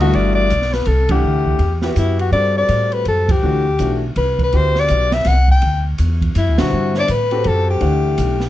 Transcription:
Already playing: upright bass D2
0.00 grand piano G2 E3 A3 D4 F#4, soprano saxophone F#4, ride
0.13 upright bass G1, soprano saxophone D5, ride
0.35 soprano saxophone D5
0.50 upright bass B1, hi-hat pedal, ride
0.62 snare
0.73 soprano saxophone B4, snare, ride
0.85 upright bass C2, soprano saxophone A4, ride
1.09 grand piano E3 A3 D4 F#5, soprano saxophone G4, kick, ride
1.23 upright bass D2
1.46 kick
1.59 upright bass E2, ride
1.82 grand piano B3 E4 F#4 G4, snare
1.96 upright bass F#2, soprano saxophone E4, hi-hat pedal, ride
2.19 soprano saxophone F#4, ride
2.32 upright bass G2, grand piano G3 C4 F#4 A4, soprano saxophone D5, ride
2.57 soprano saxophone D5
2.69 upright bass A2, hi-hat pedal, ride
2.92 soprano saxophone B4, ride
3.05 upright bass F#2, soprano saxophone A4, ride
3.29 soprano saxophone G4, kick, ride
3.43 upright bass D2, grand piano E3 A3 D4 F#4
3.79 upright bass B1, grand piano E3 A3 D4 F#4, hi-hat pedal, ride
4.16 upright bass C2, soprano saxophone B4, ride
4.39 kick, ride
4.43 soprano saxophone B4
4.52 upright bass D2, grand piano B3 E4 F#4 G4, soprano saxophone C5, ride
4.75 snare
4.79 soprano saxophone D5
4.88 upright bass B1, hi-hat pedal, ride
5.12 soprano saxophone E5, snare, ride
5.24 upright bass C2, soprano saxophone F#5, snare, ride
5.48 soprano saxophone G5, kick
5.62 upright bass D2, ride
5.98 upright bass E2, hi-hat pedal, ride
6.21 kick, ride
6.35 upright bass F#2, soprano saxophone E4, hi-hat pedal, ride
6.49 upright bass D2
6.58 upright bass B1, grand piano D3 G3 C4 E4, soprano saxophone F#4, snare, ride
6.73 upright bass G2
6.95 soprano saxophone C#5, snare
6.99 soprano saxophone D5
7.08 upright bass A2, soprano saxophone B4, hi-hat pedal, ride
7.31 grand piano C4 F#4 G4 A4, ride
7.44 upright bass F#2, soprano saxophone A4, ride
7.70 soprano saxophone G4
7.81 upright bass D2, grand piano E3 A3 D4 F#5, ride
8.18 upright bass B1, hi-hat pedal, ride
8.40 snare

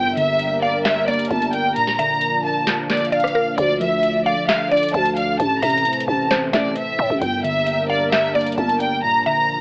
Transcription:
Already playing: 808-style bass G1, synth keys G2, analog synth pad G3 A#3 D4 A#4, violin section G5
0.17 synth keys D3, violin section E5, closed hi-hat
0.39 closed hi-hat
0.62 violin section D5, synth pluck F5
0.85 synth pluck E5, violin section E5, snare, clap
1.08 synth keys A#3, violin section D5, synth pluck D5, closed hi-hat
1.14 closed hi-hat
1.19 closed hi-hat
1.25 closed hi-hat
1.31 808-style bass G1, violin section A5, kick, closed hi-hat
1.42 closed hi-hat
1.53 violin section G5, closed hi-hat
1.76 synth keys A#2, analog synth pad F3 A#3, violin section A#5, closed hi-hat
1.87 snare
1.99 synth keys D3, synth pluck E5, violin section A#5, closed hi-hat
2.21 closed hi-hat
2.44 violin section A5
2.67 snare, clap, closed hi-hat
2.90 synth keys A#3, violin section D5, snare, clap, closed hi-hat
2.97 closed hi-hat
3.05 closed hi-hat
3.12 synth pluck D5, violin section F5, closed hi-hat
3.20 cross-stick, closed hi-hat
3.28 closed hi-hat
3.35 synth pluck A#4
3.58 808-style bass D2, synth keys D3, analog synth pad A3, violin section D5, kick, closed hi-hat
3.80 synth keys F3, violin section E5, closed hi-hat
4.03 closed hi-hat
4.26 violin section D5, synth pluck F5
4.49 synth pluck E5, violin section F5, snare, clap
4.71 synth keys D4, violin section D5, synth pluck D5, closed hi-hat
4.77 closed hi-hat
4.83 closed hi-hat
4.89 closed hi-hat
4.94 808-style bass D2, violin section A5, kick, closed hi-hat
5.06 closed hi-hat
5.17 violin section F5, closed hi-hat
5.40 808-style bass A1, synth keys A2, analog synth pad E3 C4, violin section A5, kick, closed hi-hat
5.62 808-style bass A1, synth keys C3, synth pluck E5, violin section A#5, closed hi-hat, open hi-hat
5.70 closed hi-hat
5.78 closed hi-hat
5.85 closed hi-hat
5.93 closed hi-hat
6.00 closed hi-hat
6.08 808-style bass A1, violin section A5, kick
6.31 synth pluck C5, snare, clap, closed hi-hat
6.53 808-style bass A1, synth keys A3, violin section D5, synth pluck E5, kick, snare, clap, closed hi-hat
6.76 violin section E5, closed hi-hat
6.99 808-style bass A2, kick
7.10 808-style bass A1, kick
7.21 808-style bass G1, synth keys G2, analog synth pad G3 A#3 D4 A#4, violin section G5, kick, closed hi-hat
7.44 synth keys D3, violin section E5, closed hi-hat
7.67 closed hi-hat
7.90 violin section D5, synth pluck F5
8.12 synth pluck E5, violin section E5, snare, clap
8.35 synth keys A#3, synth pluck D5, violin section D5, closed hi-hat
8.41 closed hi-hat
8.46 closed hi-hat
8.52 closed hi-hat
8.58 808-style bass G1, violin section A5, kick, closed hi-hat
8.69 closed hi-hat
8.80 violin section G5, closed hi-hat
9.03 synth keys A#2, analog synth pad F3, violin section A#5
9.26 synth keys D3, synth pluck E5, violin section A#5

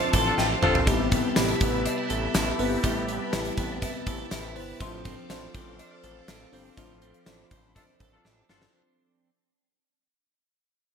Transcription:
Already playing: clean electric guitar F3 C4 F4 A4, fm electric piano C4 D4 F4 A4 C5 A5 C6, string machine A4 F5 A5 D6
0.13 analog synth bass A1, clean electric guitar A4, kick, closed hi-hat
0.26 horn section D4 F4 A4
0.38 analog synth bass A1, clean electric guitar F4, fm electric piano G5, snare, cowbell
0.62 analog synth bass G1, fm electric piano C4 D4 F4 A4 C5 F5, clean electric guitar C4, horn section D4 F4 A4, mid tom
0.75 floor tom
0.86 analog synth bass A1, clean electric guitar G3, fm electric piano B3 C4 D#4 G4 B4, string machine G4 E5 B5, kick, closed hi-hat, cowbell
0.93 fm electric piano E4
1.11 clean electric guitar B3, kick, closed hi-hat
1.36 analog synth bass A1, fm electric piano C3 B3 E4 G4 B4, clean electric guitar D4, snare, closed hi-hat, tambourine, cowbell
1.48 clean electric guitar E4, closed hi-hat
1.61 analog synth bass A1, clean electric guitar B3, kick, closed hi-hat
1.85 clean electric guitar D4, closed hi-hat, cowbell
1.98 clean electric guitar E4
2.10 analog synth bass A1, clean electric guitar A4, closed hi-hat
2.34 analog synth bass A1, clean electric guitar E4, snare, closed hi-hat, tambourine, cowbell
2.59 analog synth bass G1, fm electric piano B3 C4 E4 G4 B4, clean electric guitar B3, open hi-hat
2.83 analog synth bass A1, clean electric guitar G3, fm electric piano B3 C4 E4 G4 B4, kick, closed hi-hat, cowbell
3.08 clean electric guitar B3, closed hi-hat
3.33 analog synth bass A1, fm electric piano C3 B3 E4 G4 B4, clean electric guitar E4, snare, closed hi-hat, tambourine, cowbell
3.45 closed hi-hat
3.57 analog synth bass A1, clean electric guitar B3, kick, closed hi-hat
3.82 clean electric guitar E4, kick, closed hi-hat, cowbell
4.06 analog synth bass A1, fm electric piano E4 C5, clean electric guitar A4, kick, closed hi-hat
4.31 analog synth bass A1, clean electric guitar E4, fm electric piano G4 E5, snare, closed hi-hat, tambourine, cowbell
4.56 analog synth bass G1, clean electric guitar B3, fm electric piano E4 C5, open hi-hat
4.80 analog synth bass A1, clean electric guitar F3, fm electric piano C4 D4 E4 A4 C5, string machine A4 F5 D6, kick, closed hi-hat, cowbell
4.87 fm electric piano F4
5.05 clean electric guitar C4, kick, closed hi-hat
5.29 analog synth bass A1, fm electric piano C4 D4 F4 A4 C5, clean electric guitar D4, snare, closed hi-hat, tambourine, cowbell
5.54 analog synth bass A1, clean electric guitar C4, kick, closed hi-hat
5.79 clean electric guitar D4, closed hi-hat, cowbell
6.03 analog synth bass A1, clean electric guitar A4, closed hi-hat
6.28 analog synth bass A1, clean electric guitar D4, snare, closed hi-hat, tambourine, cowbell
6.52 analog synth bass G1, fm electric piano C4 D4 F4 A4 C5, clean electric guitar C4, open hi-hat
6.77 analog synth bass A1, clean electric guitar F3, fm electric piano C4 D4 F4 A4 C5, string machine B5, kick, closed hi-hat, cowbell
7.02 clean electric guitar C4, closed hi-hat
7.14 closed hi-hat
7.26 analog synth bass A1, fm electric piano C4 D4 F4 A4 C5, clean electric guitar D4, snare, closed hi-hat, tambourine, cowbell
7.51 analog synth bass A1, clean electric guitar C4, kick, closed hi-hat
7.76 horn section D4 F4 A4, clean electric guitar D4, kick, closed hi-hat, cowbell
8.00 analog synth bass A1, clean electric guitar A4, kick, closed hi-hat
8.13 horn section D4 F4 A4
8.25 analog synth bass A1, clean electric guitar D4, snare, cowbell
8.49 analog synth bass G1, fm electric piano C4 D4 F4 A4 C5, clean electric guitar C4, horn section D4 F4 A4, snare
8.62 snare

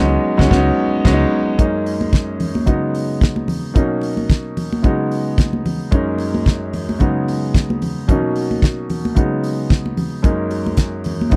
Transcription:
Already playing: fingered electric bass C#2, grand piano F#3 G#3 B3 D#4
0.00 grand piano C#4
0.05 grand piano D#4
0.37 fingered electric bass C#2, grand piano F#3 G#3 B3 C#4, kick, snare
0.46 grand piano F#3 G#3 D#4
0.51 fingered electric bass C#2, grand piano B3 C#4, kick, snare
0.58 grand piano D#4
1.04 fingered electric bass C#2, grand piano F#3 G#3 B3 C#4, kick, snare, crash
1.13 grand piano D#4
1.58 grand piano F#2 G#3 A#3 C#4 D#4, kick, closed hi-hat
1.86 open hi-hat
2.01 high conga
2.13 kick, snare, closed hi-hat, muted conga
2.40 open hi-hat, low conga
2.55 high conga
2.65 grand piano C#3 F#3 G#3 B3 D#4, kick, closed hi-hat, muted conga
2.95 open hi-hat
3.21 kick, snare, closed hi-hat, high conga
3.36 high conga
3.48 open hi-hat, muted conga, low conga
3.74 grand piano B2 F#3 A#3 C#4 D#4, kick, closed hi-hat, muted conga
4.01 open hi-hat, muted conga
4.17 high conga
4.29 kick, snare, closed hi-hat, muted conga
4.57 open hi-hat, muted conga, low conga
4.73 high conga
4.82 grand piano C#3 F#3 G#3 B3 D#4, kick, closed hi-hat
5.11 open hi-hat
5.38 kick, snare, closed hi-hat, muted conga, high conga
5.53 high conga
5.66 open hi-hat, muted conga, low conga
5.91 grand piano F#2 G#3 A#3 C#4 D#4, kick, closed hi-hat, muted conga
6.18 open hi-hat, muted conga
6.34 high conga
6.46 kick, snare, closed hi-hat
6.73 open hi-hat, muted conga, low conga
6.89 high conga
6.99 grand piano C#3 F#3 G#3 B3 D#4, kick, closed hi-hat, muted conga
7.28 open hi-hat, muted conga
7.54 kick, snare, closed hi-hat, muted conga, high conga
7.70 high conga
7.82 open hi-hat, muted conga, low conga
8.08 grand piano B2 F#3 A#3 C#4 D#4, kick, closed hi-hat, low conga
8.36 open hi-hat
8.51 high conga
8.62 kick, snare, closed hi-hat, muted conga
8.90 open hi-hat, muted conga, low conga
9.05 high conga
9.15 grand piano C#3 F#3 G#3 B3 D#4, kick, closed hi-hat
9.44 open hi-hat
9.70 kick, snare, closed hi-hat, muted conga, high conga
9.86 high conga
9.97 open hi-hat, low conga
10.22 grand piano F#2 G#3 A#3 C#4 D#4, kick, closed hi-hat, muted conga
10.51 open hi-hat, muted conga
10.66 high conga
10.77 kick, snare, closed hi-hat, muted conga
11.04 open hi-hat, muted conga, low conga
11.21 high conga
11.30 grand piano C#3 F#3 G#3 B3 D#4, kick, closed hi-hat, muted conga

